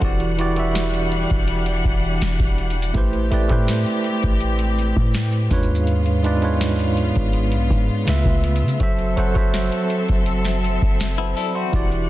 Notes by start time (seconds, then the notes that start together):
Already playing: C4 F#4 A4 F#5
0.01 E1 E3 G3 D4 E4 F#4 G4 D5 F#5, kick, closed hi-hat
0.20 closed hi-hat
0.38 E3 E4 F#4 G4 D5, closed hi-hat
0.56 E3 E4 F#4 G4 E5, closed hi-hat
0.75 snare, closed hi-hat
0.94 closed hi-hat
1.12 closed hi-hat
1.30 E1, kick, closed hi-hat
1.48 closed hi-hat
1.66 closed hi-hat
1.85 E1, kick, closed hi-hat
2.21 E1, snare, closed hi-hat
2.40 E1, kick, closed hi-hat
2.58 closed hi-hat
2.70 closed hi-hat
2.82 closed hi-hat
2.94 A1 A3 C4 E4 G4 B4 C5, kick, closed hi-hat
3.13 closed hi-hat
3.30 A1 A3 E4 G4 B4 D5, closed hi-hat
3.48 A2 A3 E4 G4 B4 C5, kick, closed hi-hat
3.68 snare, closed hi-hat
3.86 closed hi-hat
4.04 closed hi-hat
4.23 A1, kick, closed hi-hat
4.40 closed hi-hat
4.59 closed hi-hat
4.79 closed hi-hat
4.96 A2, kick
5.14 snare, closed hi-hat
5.33 closed hi-hat
5.50 D#2 G#2 C#3 G#3 B3 D4 F4 B4 C#5, kick, closed hi-hat, open hi-hat
5.63 closed hi-hat
5.75 closed hi-hat
5.87 closed hi-hat
6.06 closed hi-hat
6.23 G#2 G#3 D4 F4 B4 D5, closed hi-hat
6.41 G#2 G#3 D4 F4 B4 C#5, closed hi-hat
6.61 snare, closed hi-hat
6.79 closed hi-hat
6.97 closed hi-hat
7.16 G#1, kick, closed hi-hat
7.33 closed hi-hat
7.52 B1, closed hi-hat
7.70 G#2, kick, closed hi-hat
8.06 C#2 C#3 A3 E4 B4 E5, snare, closed hi-hat
8.14 F4
8.25 C#2, kick, closed hi-hat
8.44 closed hi-hat
8.56 closed hi-hat
8.62 C#3
8.68 closed hi-hat
8.80 F#1 F#3 C4 F#4 A4 C5 E5, kick, closed hi-hat
8.99 closed hi-hat
9.16 F#1 F#3 F#4 A4 C5 F#5, closed hi-hat
9.34 F#1 F#3 F#4 A4 C5 E5, kick, closed hi-hat
9.54 snare, closed hi-hat
9.72 closed hi-hat
9.90 closed hi-hat
10.08 F#1, kick, closed hi-hat
10.26 closed hi-hat
10.45 snare, closed hi-hat
10.64 closed hi-hat
10.82 F#1, kick
11.00 snare, closed hi-hat
11.18 B3 E4 C5 A5, closed hi-hat
11.37 E4 A4 D5 B5, open hi-hat
11.55 C4 F#4 E5 C6
11.72 E1 E3 G3 D4 E4 F#4 G4 D5 F#5, kick, closed hi-hat
11.92 closed hi-hat